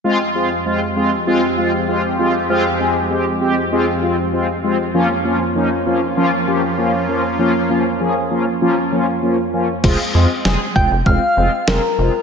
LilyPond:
<<
  \new Staff \with { instrumentName = "Soft synth lead" } { \time 4/4 \key f \minor \tempo 4 = 98 r1 | r1 | r1 | r1 |
r4. g''8 f''4 bes'4 | }
  \new Staff \with { instrumentName = "Analog polysynth" } { \time 4/4 \key f \minor <aes c' f'>8 <aes c' f'>8 <aes c' f'>8 <aes c' f'>8 <aes c' f'>8 <aes c' f'>8 <aes c' f'>8 <aes c' f'>8 | <aes c' f'>8 <aes c' aes'>8 <aes c' g'>8 <aes c' g'>8 <aes c' f'>8 <aes c' f'>8 <aes c' f'>8 <aes c' f'>8 | <f bes des' f'>8 <f bes des' f'>8 <f bes des' ees'>8 <f bes des' f'>8 <f bes des' f'>8 <f bes des' g'>8 <f bes des' f'>8 <f bes des' f'>8 | <f bes des' f'>8 <f bes des' f'>8 <f bes des' aes'>8 <f bes des' f'>8 <f bes des' f'>8 <f bes des' f'>8 <f bes des' f'>8 <f bes des' f'>8 |
<aes c' f'>8 <aes c' f'>8 <aes c' aes'>8 <aes c' f'>8 <aes c' f'>8 <aes c' f'>8 <aes c' f'>8 <aes c' f'>8 | }
  \new Staff \with { instrumentName = "Analog synth pad" } { \time 4/4 \key f \minor << { <f aes c' g'>1~ | <f aes c' g'>1 | <f bes des' f'>1~ | <f bes des' f'>1 |
r1 | } \\ { f,1~ | f,1~ | f,1~ | f,1 |
r1 | } >> }
  \new Staff \with { instrumentName = "Analog synth bass" } { \clef bass \time 4/4 \key f \minor r1 | r1 | r1 | r1 |
f,,16 r16 f,16 r16 f,,16 r16 f,,16 f,,16 f,,16 r16 f,,16 r16 f,,16 r16 f,,16 r16 | }
  \new DrumStaff \with { instrumentName = "Drums" } \drummode { \time 4/4 r4 r4 r4 r4 | r4 r4 r4 r4 | r4 r4 r4 r4 | r4 r4 r4 r4 |
<cymc bd>4 sn8 bd8 bd4 sn4 | }
>>